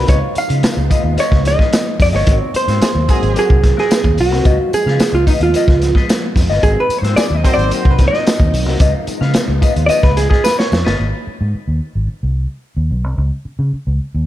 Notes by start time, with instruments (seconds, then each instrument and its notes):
Already playing: clean electric guitar C4, string machine D#4
0.07 fingered electric bass C#2, string machine F3 G#3 B3, clean electric guitar F4 B4 D#5, hollow-body jazz guitar C#5, kick, closed hi-hat, tambourine
0.20 muted clean electric guitar stroke
0.34 muted clean electric guitar stroke, muted fingered electric bass stroke, closed hi-hat, tambourine
0.38 hollow-body jazz guitar F5
0.49 fingered electric bass C#3, clean electric guitar F4 B4 F5, closed hi-hat
0.63 muted fingered electric bass stroke, muted clean electric guitar stroke, snare, closed hi-hat, tambourine
0.76 fingered electric bass C#2, muted clean electric guitar stroke
0.90 clean electric guitar F4 B4 D#5, kick, closed hi-hat, tambourine
1.04 fingered electric bass D#2, muted clean electric guitar stroke
1.16 clean electric guitar F4 B4 D#5, hollow-body jazz guitar C#5, muted fingered electric bass stroke, closed hi-hat, tambourine
1.32 fingered electric bass C#2, kick, snare
1.45 hollow-body jazz guitar D#5, muted clean electric guitar stroke, snare, closed hi-hat, tambourine
1.59 clean electric guitar F4 B4 D#5, kick, snare
1.73 muted clean electric guitar stroke, snare, closed hi-hat, tambourine
1.86 muted clean electric guitar stroke
2.00 fingered electric bass F2, hollow-body jazz guitar D5, kick, snare, open hi-hat, tambourine
2.13 fingered electric bass G1, clean electric guitar F4 B4 D#5, hollow-body jazz guitar C#5, snare
2.26 fingered electric bass G#1, string machine F#3 A#3 C4, clean electric guitar C4 F#4 A#4, kick, closed hi-hat
2.40 muted clean electric guitar stroke
2.54 hollow-body jazz guitar C5, muted clean electric guitar stroke, muted fingered electric bass stroke, closed hi-hat, tambourine
2.68 fingered electric bass G#2, clean electric guitar C4 F#4 C5, horn section C4 C5, snare, closed hi-hat
2.81 horn section G#3 G#4, muted clean electric guitar stroke, muted fingered electric bass stroke, snare, closed hi-hat, tambourine
2.95 fingered electric bass D#2, muted clean electric guitar stroke
3.08 horn section G#3 G#4, clean electric guitar C4 F#4 A#4, kick, closed hi-hat, tambourine
3.22 fingered electric bass G#1, muted clean electric guitar stroke, closed hi-hat
3.35 clean electric guitar C4 F#4 A#4, hollow-body jazz guitar G#4, muted fingered electric bass stroke, closed hi-hat, tambourine
3.50 fingered electric bass C2, kick
3.62 muted clean electric guitar stroke, kick, snare, closed hi-hat
3.77 clean electric guitar C4 F#4 A#4, hollow-body jazz guitar G#4, snare
3.90 muted clean electric guitar stroke, snare, closed hi-hat, tambourine
4.04 fingered electric bass D#2, muted clean electric guitar stroke, kick
4.18 fingered electric bass B1, hollow-body jazz guitar F#4, open hi-hat, tambourine
4.31 fingered electric bass C2, clean electric guitar C4 F#4 A#4, snare
4.44 fingered electric bass C#2, string machine F3 G#3 B3, clean electric guitar F4 B4 D#5, kick, closed hi-hat, tambourine
4.60 muted clean electric guitar stroke
4.73 hollow-body jazz guitar G#4, muted fingered electric bass stroke, muted clean electric guitar stroke, closed hi-hat, tambourine
4.86 fingered electric bass C#3, clean electric guitar F4 B4 F5, snare
5.00 muted fingered electric bass stroke, muted clean electric guitar stroke, snare, closed hi-hat, tambourine
5.13 fingered electric bass C#2, hollow-body jazz guitar F4, muted clean electric guitar stroke
5.27 hollow-body jazz guitar D#4, clean electric guitar F4 B4 D#5, kick, open hi-hat, tambourine
5.40 fingered electric bass D#2, hollow-body jazz guitar F4, closed hi-hat
5.54 clean electric guitar F4 B4 D#5, muted fingered electric bass stroke, closed hi-hat, tambourine
5.68 fingered electric bass C#2, kick, snare
5.82 muted clean electric guitar stroke, snare, closed hi-hat, tambourine
5.95 clean electric guitar F4 B4 D#5, kick, snare
6.09 muted clean electric guitar stroke, snare, closed hi-hat, tambourine
6.22 muted clean electric guitar stroke
6.36 fingered electric bass F2, kick, snare, open hi-hat, tambourine
6.49 fingered electric bass G1, clean electric guitar F4 B4 D#5, snare
6.63 fingered electric bass G#1, string machine F#3 A#3 C4 D#4, clean electric guitar C4 F#4 A#4, hollow-body jazz guitar G#4, kick, closed hi-hat, tambourine
6.77 hollow-body jazz guitar B4, muted clean electric guitar stroke
6.89 muted fingered electric bass stroke, muted clean electric guitar stroke, closed hi-hat, tambourine
6.98 fingered electric bass G#2, hollow-body jazz guitar C5
7.03 clean electric guitar C4 F#4 C5, horn section C4 C5, snare, closed hi-hat
7.16 horn section G#3 G#4, hollow-body jazz guitar D5, muted clean electric guitar stroke, muted fingered electric bass stroke, snare, closed hi-hat, tambourine
7.30 fingered electric bass D#2, muted clean electric guitar stroke
7.35 hollow-body jazz guitar D#5
7.44 horn section C4 C5, clean electric guitar C4 F#4 A#4, kick, closed hi-hat, tambourine
7.54 fingered electric bass G#1, hollow-body jazz guitar D5, muted clean electric guitar stroke
7.59 closed hi-hat
7.71 clean electric guitar C4 F#4 A#4, hollow-body jazz guitar C5, muted fingered electric bass stroke, closed hi-hat, tambourine
7.85 fingered electric bass C2, kick
7.91 hollow-body jazz guitar B4
7.98 muted clean electric guitar stroke, kick, snare, closed hi-hat, tambourine
8.08 clean electric guitar A#4, hollow-body jazz guitar D#5
8.12 clean electric guitar C4 F#4, snare
8.25 muted clean electric guitar stroke, snare, closed hi-hat, tambourine
8.39 fingered electric bass D#2, muted clean electric guitar stroke, kick
8.52 fingered electric bass B1, open hi-hat, tambourine
8.65 fingered electric bass C2, clean electric guitar C4 F#4 A#4, snare
8.79 fingered electric bass C#2, string machine F3 G#3 B3, clean electric guitar F4 B4 D#5, kick, closed hi-hat, tambourine
8.95 muted clean electric guitar stroke
9.07 muted fingered electric bass stroke, muted clean electric guitar stroke, closed hi-hat, tambourine
9.21 fingered electric bass C#3, clean electric guitar F4 B4 F5, snare
9.34 muted clean electric guitar stroke, muted fingered electric bass stroke, snare, closed hi-hat, tambourine
9.48 fingered electric bass C#2, muted clean electric guitar stroke
9.62 clean electric guitar F4 B4 D#5, kick, closed hi-hat, tambourine
9.75 fingered electric bass D#2, muted clean electric guitar stroke, closed hi-hat
9.86 clean electric guitar F4 B4 D#5, hollow-body jazz guitar D5 D#5, muted fingered electric bass stroke, closed hi-hat, tambourine
10.03 fingered electric bass C#2, hollow-body jazz guitar B4, kick, snare
10.15 hollow-body jazz guitar G#4, muted clean electric guitar stroke, snare, closed hi-hat, tambourine
10.29 clean electric guitar F4 B4 D#5, hollow-body jazz guitar G#4, kick, snare
10.43 hollow-body jazz guitar B4, muted clean electric guitar stroke, snare, tambourine
10.58 hollow-body jazz guitar C#5, muted clean electric guitar stroke, snare
10.72 fingered electric bass F2, snare, tambourine
10.85 fingered electric bass G1, clean electric guitar F4 B4 D#5, snare
11.00 fingered electric bass G#1
11.27 muted fingered electric bass stroke
11.41 fingered electric bass G#2
11.54 muted fingered electric bass stroke
11.68 fingered electric bass D#2
11.95 fingered electric bass G#1
12.08 muted fingered electric bass stroke
12.23 fingered electric bass C2
12.77 fingered electric bass D#2
12.91 fingered electric bass B1
13.04 fingered electric bass C2
13.18 fingered electric bass C#2
13.45 muted fingered electric bass stroke
13.59 fingered electric bass C#3
13.73 muted fingered electric bass stroke
13.87 fingered electric bass C#2
14.15 fingered electric bass D#2